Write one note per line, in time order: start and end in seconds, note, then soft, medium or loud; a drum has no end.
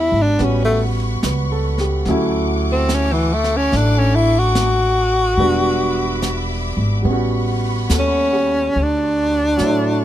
0.00 0.36 G3 medium
0.00 0.38 G3 soft
0.00 0.38 B3 soft
0.00 0.39 D4 soft
0.00 0.24 E4 medium
0.00 0.40 F#4 medium
0.00 0.36 E5 medium
0.00 0.35 A5 medium
0.00 2.03 B5 medium
0.12 0.38 G#1 medium
0.22 0.45 D4 medium
0.36 1.19 A1 medium
0.36 2.06 G3 soft
0.36 2.06 B3 soft
0.36 5.32 F#5 medium
0.36 2.03 C#6 medium
0.36 brush sweep soft
0.36 snare soft
0.41 2.07 C#4 soft
0.41 0.64 C#4 medium
0.41 2.07 F#4 soft
0.65 0.82 A3 medium
1.23 2.02 C#2 medium
1.23 1.75 B4 soft
1.23 snare soft
1.23 hi-hat pedal medium
1.52 1.94 A4 soft
1.78 2.22 G4 soft
1.78 snare soft
2.04 3.68 D2 medium
2.04 5.34 A4 medium
2.04 5.34 C#6 medium
2.04 7.01 D6 medium
2.04 brush sweep soft
2.04 snare soft
2.08 5.39 F#3 medium
2.08 3.72 A3 soft
2.08 5.39 C#4 medium
2.08 5.40 E4 medium
2.72 2.96 C4 medium
2.89 snare soft
2.89 hi-hat pedal soft
2.94 3.14 C#4 medium
3.12 3.35 E3 medium
3.33 3.58 A3 medium
3.44 snare soft
3.57 3.78 C#4 medium
3.72 5.35 A1 medium
3.72 5.39 A3 soft
3.72 brush sweep soft
3.72 snare soft
3.77 5.38 D4 soft
3.77 4.00 D4 medium
3.98 4.17 C#4 medium
4.15 4.40 E4 medium
4.39 6.48 F#4 medium
4.55 snare soft
4.55 hi-hat pedal soft
5.38 6.73 E1 medium
5.38 7.00 G3 medium
5.38 7.03 B3 medium
5.38 7.06 D4 medium
5.38 7.07 F#4 medium
5.38 7.04 E5 medium
5.38 7.03 B5 medium
5.38 brush sweep soft
6.22 snare soft
6.22 hi-hat pedal soft
6.77 7.04 G#1 medium
7.02 7.86 A1 medium
7.02 8.73 G3 soft
7.02 8.75 B3 soft
7.02 8.73 F#5 medium
7.02 8.73 B5 medium
7.02 8.72 C#6 medium
7.06 8.77 C#4 soft
7.06 brush sweep soft
7.12 8.78 F#4 medium
7.90 8.71 D#2 medium
7.90 8.57 A4 soft
7.90 snare soft
7.90 hi-hat pedal medium
7.99 8.84 C#4 medium
8.33 8.92 G4 soft
8.73 9.56 D2 medium
8.73 10.05 F#4 medium
8.73 10.05 C#5 medium
8.73 10.05 A5 medium
8.73 10.05 C#6 medium
8.73 brush sweep soft
8.82 10.05 D4 medium
9.57 10.05 A2 medium
9.57 10.05 F#3 soft
9.57 10.05 A3 soft
9.57 snare soft
9.57 hi-hat pedal soft
9.61 10.05 E4 medium
9.61 10.05 C#5 soft